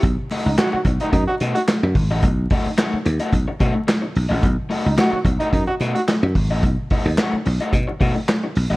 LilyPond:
<<
  \new Staff \with { instrumentName = "Trombone" } { \time 4/4 \key b \major \tempo 4 = 109 r8. dis'16 fis'16 fis'16 r16 dis'16 dis'16 fis'16 r16 fis'16 r4 | r1 | r8. dis'16 fis'16 fis'16 r16 dis'16 dis'16 fis'16 r16 fis'16 r4 | r1 | }
  \new Staff \with { instrumentName = "Overdriven electric guitar" } { \time 4/4 \key b \major r8 <a dis' fis' dis''>16 r16 <a dis' fis' cis''>16 r8 <a dis' fis' dis''>16 r8 <a dis' fis' dis''>16 r4 <a dis' fis' dis''>16 | r8 <a dis' fis' dis''>16 r16 <a dis' fis' cis''>16 r8 <a dis' fis' dis''>16 r8 <a dis' fis' dis''>16 r4 <a dis' fis' dis''>16 | r8 <a dis' fis' dis''>16 r16 <a dis' fis' cis''>16 r8 <a dis' fis' dis''>16 r8 <a dis' fis' dis''>16 r4 <a dis' fis' dis''>16 | r8 <a dis' fis' dis''>16 r16 <a dis' fis' cis''>16 r8 <a dis' fis' dis''>16 r8 <a dis' fis' dis''>16 r4 <a dis' fis' dis''>16 | }
  \new Staff \with { instrumentName = "Slap bass" } { \clef bass \time 4/4 \key b \major b,,16 r8 cis,16 r8 b,,16 r16 fis,16 r16 b,16 r8 fis,16 gis,,16 a,,16 | b,,8 r4 dis,16 r16 b,,16 r16 b,16 r8. b,,16 a,,16 | b,,16 r8 cis,16 r8 b,,16 r16 fis,16 r16 b,16 r8 fis,16 gis,,16 a,,16 | b,,16 r8 dis,16 r8 b,,16 r16 b,16 r16 b,16 r8. b,,16 a,,16 | }
  \new DrumStaff \with { instrumentName = "Drums" } \drummode { \time 4/4 <hh bd>8 hho8 <hc hh sn>8 <hh bd>16 hh16 <hh bd>8 hh16 hh16 <hc hh sn>8 <hho bd>8 | <hh bd>8 <hho bd>8 <hc hh sn>8 hh16 hh16 <hh bd>8 <hh bd>8 <hc hh sn>8 hho8 | <hh bd>8 hho8 <hc hh sn>8 <hh bd>16 hh16 <hh bd>8 hh16 hh16 <hc hh sn>8 <hho bd>8 | <hh bd>8 <hho bd>8 <hc hh sn>8 hho16 hh16 <hh bd>8 <hho bd>8 <hc hh sn>8 hho8 | }
>>